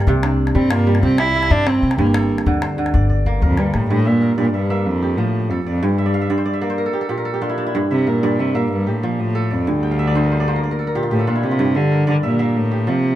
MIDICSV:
0, 0, Header, 1, 5, 480
1, 0, Start_track
1, 0, Tempo, 320171
1, 106, Time_signature, 12, 3, 24, 8
1, 19720, End_track
2, 0, Start_track
2, 0, Title_t, "Kora"
2, 0, Program_c, 0, 46
2, 0, Note_on_c, 0, 43, 84
2, 0, Note_on_c, 0, 50, 72
2, 0, Note_on_c, 0, 55, 81
2, 0, Note_on_c, 0, 58, 74
2, 0, Note_on_c, 0, 70, 67
2, 0, Note_on_c, 0, 74, 57
2, 119, Note_on_c, 0, 48, 90
2, 181, Note_off_c, 0, 43, 0
2, 181, Note_off_c, 0, 50, 0
2, 181, Note_off_c, 0, 55, 0
2, 351, Note_on_c, 0, 62, 66
2, 575, Note_off_c, 0, 74, 0
2, 822, Note_on_c, 0, 55, 80
2, 1070, Note_on_c, 0, 65, 67
2, 1283, Note_off_c, 0, 55, 0
2, 1301, Note_on_c, 0, 55, 77
2, 1306, Note_off_c, 0, 70, 0
2, 1548, Note_on_c, 0, 67, 63
2, 1784, Note_off_c, 0, 67, 0
2, 1790, Note_on_c, 0, 67, 61
2, 2027, Note_on_c, 0, 64, 76
2, 2049, Note_off_c, 0, 58, 0
2, 2117, Note_off_c, 0, 65, 0
2, 2256, Note_off_c, 0, 64, 0
2, 2262, Note_on_c, 0, 64, 72
2, 2505, Note_on_c, 0, 60, 76
2, 2869, Note_off_c, 0, 62, 0
2, 2975, Note_on_c, 0, 43, 93
2, 3049, Note_off_c, 0, 48, 0
2, 3049, Note_off_c, 0, 55, 0
2, 3218, Note_on_c, 0, 69, 66
2, 3697, Note_on_c, 0, 50, 79
2, 3907, Note_off_c, 0, 67, 0
2, 3933, Note_on_c, 0, 72, 58
2, 4150, Note_off_c, 0, 50, 0
2, 4168, Note_on_c, 0, 50, 79
2, 4408, Note_on_c, 0, 74, 60
2, 4612, Note_off_c, 0, 64, 0
2, 4636, Note_off_c, 0, 74, 0
2, 4642, Note_on_c, 0, 74, 53
2, 4891, Note_on_c, 0, 58, 76
2, 4981, Note_off_c, 0, 69, 0
2, 5132, Note_on_c, 0, 70, 63
2, 5203, Note_off_c, 0, 60, 0
2, 5371, Note_on_c, 0, 55, 67
2, 5714, Note_off_c, 0, 72, 0
2, 5835, Note_off_c, 0, 43, 0
2, 5853, Note_on_c, 0, 43, 74
2, 5922, Note_off_c, 0, 50, 0
2, 5922, Note_off_c, 0, 55, 0
2, 6079, Note_on_c, 0, 76, 54
2, 6303, Note_off_c, 0, 74, 0
2, 6317, Note_off_c, 0, 70, 0
2, 6323, Note_on_c, 0, 70, 52
2, 6545, Note_off_c, 0, 43, 0
2, 6563, Note_on_c, 0, 43, 66
2, 6563, Note_on_c, 0, 74, 56
2, 6800, Note_off_c, 0, 76, 0
2, 6806, Note_on_c, 0, 76, 50
2, 7041, Note_off_c, 0, 76, 0
2, 7043, Note_off_c, 0, 58, 0
2, 7047, Note_on_c, 0, 76, 59
2, 7049, Note_on_c, 0, 58, 64
2, 7363, Note_off_c, 0, 43, 0
2, 7532, Note_on_c, 0, 67, 53
2, 7764, Note_on_c, 0, 53, 60
2, 7854, Note_off_c, 0, 76, 0
2, 8224, Note_off_c, 0, 74, 0
2, 8232, Note_off_c, 0, 70, 0
2, 8254, Note_on_c, 0, 69, 68
2, 8344, Note_off_c, 0, 58, 0
2, 8493, Note_on_c, 0, 74, 62
2, 8733, Note_on_c, 0, 43, 77
2, 8804, Note_off_c, 0, 53, 0
2, 8969, Note_on_c, 0, 76, 62
2, 9077, Note_off_c, 0, 74, 0
2, 9083, Note_on_c, 0, 74, 59
2, 9205, Note_on_c, 0, 77, 67
2, 9295, Note_off_c, 0, 76, 0
2, 9316, Note_on_c, 0, 76, 59
2, 9425, Note_off_c, 0, 43, 0
2, 9435, Note_off_c, 0, 74, 0
2, 9441, Note_on_c, 0, 74, 59
2, 9443, Note_on_c, 0, 43, 74
2, 9560, Note_on_c, 0, 72, 60
2, 9649, Note_off_c, 0, 67, 0
2, 9671, Note_off_c, 0, 74, 0
2, 9677, Note_on_c, 0, 74, 59
2, 9792, Note_off_c, 0, 76, 0
2, 9798, Note_on_c, 0, 76, 60
2, 9888, Note_off_c, 0, 77, 0
2, 9909, Note_off_c, 0, 74, 0
2, 9915, Note_on_c, 0, 74, 61
2, 9918, Note_on_c, 0, 58, 67
2, 10008, Note_off_c, 0, 69, 0
2, 10035, Note_off_c, 0, 72, 0
2, 10041, Note_on_c, 0, 72, 65
2, 10164, Note_on_c, 0, 70, 60
2, 10246, Note_off_c, 0, 43, 0
2, 10283, Note_on_c, 0, 69, 57
2, 10373, Note_off_c, 0, 58, 0
2, 10392, Note_on_c, 0, 67, 56
2, 10505, Note_off_c, 0, 69, 0
2, 10511, Note_on_c, 0, 69, 60
2, 10601, Note_off_c, 0, 70, 0
2, 10627, Note_off_c, 0, 67, 0
2, 10630, Note_on_c, 0, 46, 65
2, 10633, Note_on_c, 0, 67, 62
2, 10757, Note_on_c, 0, 70, 60
2, 10847, Note_off_c, 0, 69, 0
2, 10871, Note_on_c, 0, 69, 62
2, 10994, Note_off_c, 0, 67, 0
2, 11000, Note_on_c, 0, 67, 53
2, 11116, Note_on_c, 0, 62, 66
2, 11118, Note_on_c, 0, 65, 60
2, 11208, Note_off_c, 0, 76, 0
2, 11234, Note_on_c, 0, 64, 60
2, 11353, Note_off_c, 0, 62, 0
2, 11359, Note_on_c, 0, 62, 61
2, 11486, Note_off_c, 0, 64, 0
2, 11492, Note_on_c, 0, 64, 62
2, 11576, Note_off_c, 0, 74, 0
2, 11582, Note_off_c, 0, 65, 0
2, 11614, Note_on_c, 0, 43, 88
2, 11689, Note_off_c, 0, 46, 0
2, 11821, Note_off_c, 0, 72, 0
2, 11857, Note_on_c, 0, 76, 57
2, 12088, Note_off_c, 0, 70, 0
2, 12094, Note_on_c, 0, 70, 57
2, 12184, Note_off_c, 0, 69, 0
2, 12322, Note_off_c, 0, 43, 0
2, 12339, Note_on_c, 0, 43, 76
2, 12340, Note_on_c, 0, 74, 64
2, 12573, Note_off_c, 0, 76, 0
2, 12579, Note_on_c, 0, 76, 54
2, 12812, Note_off_c, 0, 76, 0
2, 12814, Note_on_c, 0, 58, 67
2, 12818, Note_on_c, 0, 76, 60
2, 13117, Note_off_c, 0, 67, 0
2, 13131, Note_off_c, 0, 43, 0
2, 13295, Note_on_c, 0, 67, 52
2, 13541, Note_on_c, 0, 53, 72
2, 13631, Note_off_c, 0, 64, 0
2, 13631, Note_off_c, 0, 76, 0
2, 13877, Note_off_c, 0, 62, 0
2, 14001, Note_off_c, 0, 74, 0
2, 14003, Note_off_c, 0, 70, 0
2, 14017, Note_on_c, 0, 69, 68
2, 14107, Note_off_c, 0, 58, 0
2, 14252, Note_on_c, 0, 74, 55
2, 14500, Note_on_c, 0, 43, 77
2, 14572, Note_off_c, 0, 53, 0
2, 14734, Note_on_c, 0, 79, 61
2, 14863, Note_on_c, 0, 77, 59
2, 14976, Note_on_c, 0, 76, 61
2, 15096, Note_off_c, 0, 74, 0
2, 15102, Note_on_c, 0, 74, 67
2, 15203, Note_off_c, 0, 43, 0
2, 15220, Note_on_c, 0, 43, 66
2, 15222, Note_on_c, 0, 72, 60
2, 15345, Note_on_c, 0, 70, 56
2, 15412, Note_off_c, 0, 67, 0
2, 15435, Note_off_c, 0, 69, 0
2, 15460, Note_off_c, 0, 72, 0
2, 15466, Note_on_c, 0, 72, 61
2, 15584, Note_off_c, 0, 74, 0
2, 15590, Note_on_c, 0, 74, 64
2, 15704, Note_off_c, 0, 72, 0
2, 15707, Note_on_c, 0, 58, 67
2, 15710, Note_on_c, 0, 72, 60
2, 15824, Note_off_c, 0, 70, 0
2, 15830, Note_on_c, 0, 70, 59
2, 15937, Note_off_c, 0, 74, 0
2, 15943, Note_on_c, 0, 74, 54
2, 16014, Note_off_c, 0, 43, 0
2, 16052, Note_off_c, 0, 70, 0
2, 16058, Note_on_c, 0, 70, 63
2, 16131, Note_off_c, 0, 79, 0
2, 16176, Note_on_c, 0, 69, 53
2, 16266, Note_off_c, 0, 58, 0
2, 16292, Note_off_c, 0, 70, 0
2, 16298, Note_on_c, 0, 70, 63
2, 16360, Note_off_c, 0, 77, 0
2, 16420, Note_on_c, 0, 46, 68
2, 16424, Note_on_c, 0, 67, 65
2, 16510, Note_off_c, 0, 69, 0
2, 16526, Note_off_c, 0, 76, 0
2, 16534, Note_on_c, 0, 65, 59
2, 16651, Note_off_c, 0, 67, 0
2, 16657, Note_on_c, 0, 67, 61
2, 16774, Note_on_c, 0, 69, 56
2, 16864, Note_off_c, 0, 70, 0
2, 16895, Note_off_c, 0, 65, 0
2, 16898, Note_on_c, 0, 62, 59
2, 16901, Note_on_c, 0, 65, 61
2, 17022, Note_on_c, 0, 64, 56
2, 17132, Note_off_c, 0, 67, 0
2, 17138, Note_on_c, 0, 67, 63
2, 17252, Note_off_c, 0, 65, 0
2, 17258, Note_on_c, 0, 65, 62
2, 17348, Note_off_c, 0, 64, 0
2, 17376, Note_on_c, 0, 43, 84
2, 17457, Note_off_c, 0, 46, 0
2, 17491, Note_off_c, 0, 72, 0
2, 17604, Note_off_c, 0, 74, 0
2, 17612, Note_on_c, 0, 76, 60
2, 17702, Note_off_c, 0, 65, 0
2, 17857, Note_on_c, 0, 70, 54
2, 17946, Note_off_c, 0, 69, 0
2, 18078, Note_off_c, 0, 43, 0
2, 18095, Note_on_c, 0, 43, 67
2, 18100, Note_on_c, 0, 74, 65
2, 18332, Note_off_c, 0, 76, 0
2, 18338, Note_on_c, 0, 76, 64
2, 18573, Note_off_c, 0, 76, 0
2, 18577, Note_on_c, 0, 58, 66
2, 18579, Note_on_c, 0, 76, 59
2, 18900, Note_off_c, 0, 43, 0
2, 19054, Note_off_c, 0, 67, 0
2, 19060, Note_on_c, 0, 67, 51
2, 19295, Note_on_c, 0, 53, 73
2, 19385, Note_off_c, 0, 76, 0
2, 19416, Note_off_c, 0, 62, 0
2, 19720, Note_off_c, 0, 53, 0
2, 19720, Note_off_c, 0, 58, 0
2, 19720, Note_off_c, 0, 67, 0
2, 19720, Note_off_c, 0, 70, 0
2, 19720, Note_off_c, 0, 74, 0
2, 19720, End_track
3, 0, Start_track
3, 0, Title_t, "Cello"
3, 0, Program_c, 1, 42
3, 828, Note_on_c, 1, 60, 82
3, 1062, Note_on_c, 1, 58, 94
3, 1085, Note_off_c, 1, 60, 0
3, 1528, Note_off_c, 1, 58, 0
3, 1537, Note_on_c, 1, 60, 90
3, 1785, Note_on_c, 1, 64, 91
3, 1807, Note_off_c, 1, 60, 0
3, 2259, Note_on_c, 1, 62, 100
3, 2282, Note_off_c, 1, 64, 0
3, 2492, Note_on_c, 1, 60, 90
3, 2515, Note_off_c, 1, 62, 0
3, 2960, Note_off_c, 1, 60, 0
3, 2969, Note_on_c, 1, 58, 75
3, 3472, Note_off_c, 1, 58, 0
3, 5075, Note_on_c, 1, 43, 49
3, 5153, Note_on_c, 1, 41, 91
3, 5176, Note_off_c, 1, 43, 0
3, 5376, Note_on_c, 1, 43, 77
3, 5398, Note_off_c, 1, 41, 0
3, 5620, Note_on_c, 1, 45, 88
3, 5643, Note_off_c, 1, 43, 0
3, 5844, Note_off_c, 1, 45, 0
3, 5853, Note_on_c, 1, 45, 95
3, 6092, Note_on_c, 1, 46, 91
3, 6115, Note_off_c, 1, 45, 0
3, 6565, Note_off_c, 1, 46, 0
3, 6574, Note_on_c, 1, 46, 82
3, 6794, Note_off_c, 1, 46, 0
3, 6800, Note_on_c, 1, 43, 81
3, 7285, Note_on_c, 1, 41, 81
3, 7308, Note_off_c, 1, 43, 0
3, 7753, Note_on_c, 1, 45, 72
3, 7776, Note_off_c, 1, 41, 0
3, 8240, Note_on_c, 1, 41, 61
3, 8263, Note_off_c, 1, 45, 0
3, 8475, Note_off_c, 1, 41, 0
3, 8484, Note_on_c, 1, 41, 77
3, 8734, Note_on_c, 1, 43, 73
3, 8757, Note_off_c, 1, 41, 0
3, 9693, Note_off_c, 1, 43, 0
3, 11861, Note_on_c, 1, 48, 82
3, 12106, Note_on_c, 1, 46, 76
3, 12129, Note_off_c, 1, 48, 0
3, 12581, Note_on_c, 1, 48, 71
3, 12603, Note_off_c, 1, 46, 0
3, 12811, Note_on_c, 1, 46, 72
3, 12834, Note_off_c, 1, 48, 0
3, 13054, Note_off_c, 1, 46, 0
3, 13067, Note_on_c, 1, 43, 73
3, 13311, Note_on_c, 1, 45, 64
3, 13334, Note_off_c, 1, 43, 0
3, 13545, Note_on_c, 1, 46, 73
3, 13568, Note_off_c, 1, 45, 0
3, 13786, Note_on_c, 1, 45, 81
3, 13809, Note_off_c, 1, 46, 0
3, 14271, Note_on_c, 1, 41, 77
3, 14294, Note_off_c, 1, 45, 0
3, 14514, Note_on_c, 1, 38, 89
3, 14537, Note_off_c, 1, 41, 0
3, 16429, Note_off_c, 1, 38, 0
3, 16665, Note_on_c, 1, 45, 91
3, 16915, Note_on_c, 1, 46, 71
3, 16937, Note_off_c, 1, 45, 0
3, 17153, Note_on_c, 1, 48, 88
3, 17176, Note_off_c, 1, 46, 0
3, 17630, Note_on_c, 1, 50, 88
3, 17653, Note_off_c, 1, 48, 0
3, 18107, Note_off_c, 1, 50, 0
3, 18121, Note_on_c, 1, 50, 82
3, 18226, Note_off_c, 1, 50, 0
3, 18353, Note_on_c, 1, 46, 85
3, 18830, Note_on_c, 1, 45, 85
3, 18853, Note_off_c, 1, 46, 0
3, 19311, Note_on_c, 1, 48, 89
3, 19334, Note_off_c, 1, 45, 0
3, 19720, Note_off_c, 1, 48, 0
3, 19720, End_track
4, 0, Start_track
4, 0, Title_t, "Upright bass"
4, 0, Program_c, 2, 32
4, 110, Note_on_c, 2, 36, 106
4, 765, Note_off_c, 2, 36, 0
4, 827, Note_on_c, 2, 43, 93
4, 1482, Note_off_c, 2, 43, 0
4, 1545, Note_on_c, 2, 36, 92
4, 2199, Note_off_c, 2, 36, 0
4, 2257, Note_on_c, 2, 43, 95
4, 2691, Note_off_c, 2, 43, 0
4, 2737, Note_on_c, 2, 48, 83
4, 2953, Note_off_c, 2, 48, 0
4, 2965, Note_on_c, 2, 31, 89
4, 3627, Note_off_c, 2, 31, 0
4, 3699, Note_on_c, 2, 38, 88
4, 4353, Note_off_c, 2, 38, 0
4, 4404, Note_on_c, 2, 31, 101
4, 5065, Note_off_c, 2, 31, 0
4, 5124, Note_on_c, 2, 38, 94
4, 5561, Note_off_c, 2, 38, 0
4, 5606, Note_on_c, 2, 43, 86
4, 5824, Note_off_c, 2, 43, 0
4, 19720, End_track
5, 0, Start_track
5, 0, Title_t, "Calabash"
5, 104, Note_on_c, 9, 36, 58
5, 104, Note_on_c, 9, 38, 20
5, 254, Note_off_c, 9, 36, 0
5, 254, Note_off_c, 9, 38, 0
5, 347, Note_on_c, 9, 38, 59
5, 497, Note_off_c, 9, 38, 0
5, 705, Note_on_c, 9, 38, 46
5, 826, Note_off_c, 9, 38, 0
5, 826, Note_on_c, 9, 36, 55
5, 826, Note_on_c, 9, 38, 19
5, 976, Note_off_c, 9, 36, 0
5, 976, Note_off_c, 9, 38, 0
5, 1057, Note_on_c, 9, 38, 72
5, 1181, Note_off_c, 9, 38, 0
5, 1181, Note_on_c, 9, 38, 18
5, 1331, Note_off_c, 9, 38, 0
5, 1422, Note_on_c, 9, 38, 47
5, 1542, Note_off_c, 9, 38, 0
5, 1542, Note_on_c, 9, 36, 64
5, 1542, Note_on_c, 9, 38, 20
5, 1692, Note_off_c, 9, 36, 0
5, 1692, Note_off_c, 9, 38, 0
5, 1774, Note_on_c, 9, 38, 63
5, 1924, Note_off_c, 9, 38, 0
5, 2139, Note_on_c, 9, 38, 46
5, 2261, Note_on_c, 9, 36, 69
5, 2289, Note_off_c, 9, 38, 0
5, 2411, Note_off_c, 9, 36, 0
5, 2499, Note_on_c, 9, 38, 60
5, 2621, Note_off_c, 9, 38, 0
5, 2621, Note_on_c, 9, 38, 22
5, 2746, Note_off_c, 9, 38, 0
5, 2746, Note_on_c, 9, 38, 21
5, 2864, Note_off_c, 9, 38, 0
5, 2864, Note_on_c, 9, 38, 54
5, 2978, Note_off_c, 9, 38, 0
5, 2978, Note_on_c, 9, 36, 64
5, 2978, Note_on_c, 9, 38, 22
5, 3100, Note_off_c, 9, 38, 0
5, 3100, Note_on_c, 9, 38, 21
5, 3127, Note_off_c, 9, 36, 0
5, 3214, Note_off_c, 9, 38, 0
5, 3214, Note_on_c, 9, 38, 66
5, 3344, Note_off_c, 9, 38, 0
5, 3344, Note_on_c, 9, 38, 21
5, 3494, Note_off_c, 9, 38, 0
5, 3573, Note_on_c, 9, 38, 50
5, 3694, Note_on_c, 9, 36, 64
5, 3723, Note_off_c, 9, 38, 0
5, 3809, Note_on_c, 9, 38, 19
5, 3843, Note_off_c, 9, 36, 0
5, 3927, Note_off_c, 9, 38, 0
5, 3927, Note_on_c, 9, 38, 59
5, 4077, Note_off_c, 9, 38, 0
5, 4289, Note_on_c, 9, 38, 48
5, 4406, Note_on_c, 9, 36, 67
5, 4439, Note_off_c, 9, 38, 0
5, 4556, Note_off_c, 9, 36, 0
5, 4643, Note_on_c, 9, 36, 36
5, 4793, Note_off_c, 9, 36, 0
5, 4883, Note_on_c, 9, 36, 43
5, 5033, Note_off_c, 9, 36, 0
5, 5131, Note_on_c, 9, 36, 50
5, 5280, Note_off_c, 9, 36, 0
5, 5359, Note_on_c, 9, 38, 52
5, 5509, Note_off_c, 9, 38, 0
5, 5603, Note_on_c, 9, 38, 46
5, 5752, Note_off_c, 9, 38, 0
5, 19720, End_track
0, 0, End_of_file